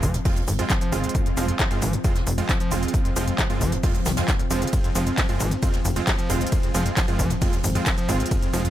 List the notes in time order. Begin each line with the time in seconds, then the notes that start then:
Already playing: F3 C4
0.02 F1 F3, kick, open hi-hat, shaker
0.14 F2, closed hi-hat, shaker
0.25 F2 G#3 C4 F4, kick, closed hi-hat, open hi-hat, shaker
0.37 D#2, closed hi-hat, shaker
0.47 G#1 F2, open hi-hat, shaker
0.59 F2 G#3 C4 F4, closed hi-hat, shaker
0.69 F3, kick, snare, clap, closed hi-hat, shaker
0.81 F3, closed hi-hat, shaker
0.92 F1 G#1 G#3 C4 F4, open hi-hat, shaker
1.04 F2, closed hi-hat, shaker
1.09 closed hi-hat
1.15 F2, kick, closed hi-hat, shaker
1.26 F2, closed hi-hat
1.37 F1 F3 G#3 C4 F4, open hi-hat, shaker
1.48 F2, closed hi-hat, shaker
1.59 F3, kick, snare, clap, closed hi-hat, shaker
1.71 F#2 G#3 C4 F4, closed hi-hat
1.82 G#1 F3, open hi-hat, shaker
1.93 F2, closed hi-hat, shaker
2.04 F2 G#3 C4 F4, kick, closed hi-hat, shaker
2.16 D#2, snare, closed hi-hat, shaker
2.27 F1 F2, open hi-hat, shaker
2.38 F2 G#3 C4 F4, closed hi-hat, shaker
2.49 F3, kick, snare, clap, closed hi-hat, shaker
2.60 F3, closed hi-hat, shaker
2.71 F1 G#3 C4 F4, open hi-hat, shaker
2.83 F2, closed hi-hat, shaker
2.88 closed hi-hat
2.94 F2, kick, closed hi-hat, shaker
3.05 F2, closed hi-hat
3.16 F1 F3 G#3 C4 F4, open hi-hat, shaker
3.27 F2, closed hi-hat, shaker
3.39 F3, kick, snare, clap, closed hi-hat, shaker
3.50 F#2 G#3 C4 F4, closed hi-hat
3.61 F1 F3, kick, open hi-hat, shaker
3.72 F2, closed hi-hat, shaker
3.83 F2 G#3 C4 F4, kick, closed hi-hat, open hi-hat, shaker
3.95 D#2, closed hi-hat, shaker
4.05 C2 D#3, snare, open hi-hat, shaker
4.17 F2 G#3 C4 F4, snare, closed hi-hat, shaker
4.28 D#2, kick, snare, clap, closed hi-hat, shaker
4.39 F2, closed hi-hat, shaker
4.51 F1 F3 G#3 C4 F4, open hi-hat, shaker
4.62 C3, closed hi-hat, shaker
4.67 closed hi-hat
4.73 F2, kick, closed hi-hat, ride, shaker
4.84 F2, closed hi-hat
4.95 F1 F3 G#3 C4 F4, open hi-hat, shaker
5.07 F2, closed hi-hat, shaker
5.18 F3, kick, snare, clap, closed hi-hat, ride, shaker
5.29 F#2 G#3 C4 F4, closed hi-hat
5.40 G#1 F3, open hi-hat, shaker
5.51 F2, closed hi-hat, shaker
5.63 F2 G#3 C4 F4, kick, closed hi-hat, ride, shaker
5.73 D#2, snare, closed hi-hat, shaker
5.85 F1 F2, open hi-hat, shaker
5.96 F2 G#3 C4 F4, closed hi-hat, shaker
6.07 F3, kick, snare, clap, closed hi-hat, ride, shaker
6.19 F3, closed hi-hat, shaker
6.30 F1 G#3 C4 F4, open hi-hat, shaker
6.41 F2, closed hi-hat, shaker
6.47 closed hi-hat
6.52 F2, kick, closed hi-hat, ride, shaker
6.63 F2, closed hi-hat
6.74 F1 F3 G#3 C4 F4, open hi-hat, shaker
6.86 F2, closed hi-hat, shaker
6.96 F3, kick, snare, clap, closed hi-hat, ride, shaker
7.08 F#2 G#3 C4 F4, closed hi-hat
7.19 F1 F3, kick, open hi-hat, shaker
7.30 F2, closed hi-hat, shaker
7.42 F2 G#3 C4 F4, kick, closed hi-hat, open hi-hat, ride, shaker
7.53 D#2, closed hi-hat, shaker
7.64 G#1 F2, open hi-hat, shaker
7.75 F2 G#3 C4 F4, closed hi-hat, shaker
7.86 F3, kick, snare, clap, closed hi-hat, ride, shaker
7.98 F3, closed hi-hat, shaker
8.09 F1 G#1 G#3 C4 F4, open hi-hat, shaker
8.20 F2, closed hi-hat, shaker
8.26 closed hi-hat
8.31 F2, kick, closed hi-hat, ride, shaker
8.42 F2, closed hi-hat
8.53 F1 F3 G#3 C4 F4, open hi-hat, shaker
8.65 F2, closed hi-hat, shaker